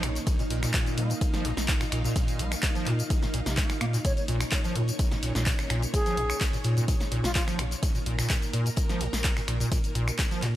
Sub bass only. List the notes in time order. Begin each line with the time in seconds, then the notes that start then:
0.03 A#1
0.50 A#1
0.98 A#2
1.45 A#1
1.57 A#1
1.92 A#1
2.39 A#1
2.87 A#2
3.34 A#1
3.46 A#1
3.81 A#2
4.28 A#1
4.76 A#2
5.23 A#1
5.35 A#1
5.70 A#1
6.17 A#1
6.65 A#2
7.12 A#1
7.24 A#1
7.59 A#1
8.06 A#1
8.53 A#2
9.01 A#1
9.13 A#1
9.48 A#1
9.95 A#1
10.43 A#2